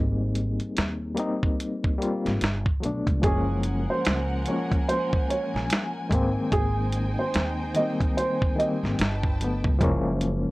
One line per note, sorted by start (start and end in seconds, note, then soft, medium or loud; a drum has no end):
0.00 0.57 G#1 loud
0.00 0.94 G3 medium
0.00 0.95 A#3 medium
0.00 0.96 C4 medium
0.00 1.00 D#4 medium
0.00 2.43 G#4 medium
0.35 closed hi-hat medium
0.60 closed hi-hat soft
0.77 1.15 D#2 loud
0.77 snare loud
0.77 closed hi-hat medium
1.14 1.88 G3 medium
1.14 1.89 A#3 medium
1.14 1.90 C4 medium
1.14 closed hi-hat medium
1.20 1.91 D#4 loud
1.43 kick medium
1.60 closed hi-hat medium
1.84 kick medium
1.98 2.40 G3 medium
1.98 2.41 A#3 medium
1.98 2.42 C4 medium
1.98 closed hi-hat medium
2.03 2.43 F4 medium
2.26 2.40 G#1 medium
2.26 snare soft
2.26 closed hi-hat soft
2.41 2.64 G1 medium
2.41 snare loud
2.41 closed hi-hat medium
2.66 kick medium
2.80 3.05 B1 medium
2.80 3.17 F#3 medium
2.80 3.18 A3 medium
2.80 3.19 B3 medium
2.80 closed hi-hat medium
2.85 3.20 D4 medium
3.07 3.22 C#2 medium
3.07 kick medium
3.07 closed hi-hat soft
3.22 3.85 F#1 loud
3.22 4.30 F3 medium
3.22 6.08 F3 medium
3.22 4.31 G#3 medium
3.22 4.32 A#3 medium
3.22 3.86 G#4 medium
3.22 6.08 A#4 medium
3.22 6.08 F#5 medium
3.22 8.95 G#5 medium
3.22 kick loud
3.22 closed hi-hat medium
3.27 4.33 C#4 loud
3.63 closed hi-hat medium
3.90 4.44 C5 medium
4.05 4.43 C#2 medium
4.05 snare loud
4.05 closed hi-hat medium
4.46 5.88 F3 medium
4.46 5.88 G#3 medium
4.46 5.89 A#3 medium
4.46 4.84 C#5 medium
4.46 closed hi-hat medium
4.51 5.90 C#4 medium
4.71 kick medium
4.71 closed hi-hat soft
4.88 5.29 C5 medium
4.88 closed hi-hat medium
5.13 kick medium
5.30 5.91 C#5 medium
5.30 closed hi-hat medium
5.54 5.69 A#1 medium
5.54 snare soft
5.70 snare loud
5.70 closed hi-hat medium
6.09 6.34 G#1 loud
6.09 7.52 D#3 medium
6.09 7.53 G#3 medium
6.09 7.53 A#3 medium
6.09 8.96 D#4 medium
6.09 8.96 C5 medium
6.09 8.96 G5 medium
6.09 kick medium
6.09 closed hi-hat medium
6.15 7.54 C4 loud
6.52 7.14 G#1 loud
6.52 7.15 G#4 medium
6.52 kick loud
6.52 closed hi-hat medium
6.92 closed hi-hat medium
7.19 7.72 C5 medium
7.34 7.72 D#2 medium
7.34 snare loud
7.34 closed hi-hat medium
7.74 8.47 D#3 medium
7.74 8.48 G3 medium
7.74 8.48 A#3 medium
7.74 8.13 D#5 medium
7.74 closed hi-hat medium
7.79 8.49 C4 medium
8.01 kick medium
8.01 closed hi-hat soft
8.17 8.54 C5 medium
8.17 closed hi-hat medium
8.42 kick medium
8.56 8.98 D#3 medium
8.56 8.99 G3 medium
8.56 8.99 A#3 medium
8.56 9.77 D#5 medium
8.60 9.00 C4 medium
8.60 closed hi-hat medium
8.83 8.98 G#1 medium
8.83 snare soft
8.98 9.61 G1 medium
8.98 9.80 F#3 medium
8.98 9.80 B4 medium
8.98 9.80 G5 medium
8.98 9.80 A5 medium
8.98 snare loud
8.98 closed hi-hat medium
9.23 kick medium
9.39 9.75 D3 medium
9.39 9.76 F#3 medium
9.39 9.77 A3 medium
9.39 closed hi-hat medium
9.44 9.78 B3 medium
9.64 9.83 C#2 medium
9.64 kick medium
9.79 10.43 F#1 loud
9.79 10.51 F3 loud
9.79 10.51 G#3 loud
9.79 10.51 A#3 loud
9.79 kick loud
9.79 closed hi-hat medium
9.84 10.51 C#4 loud
10.21 closed hi-hat medium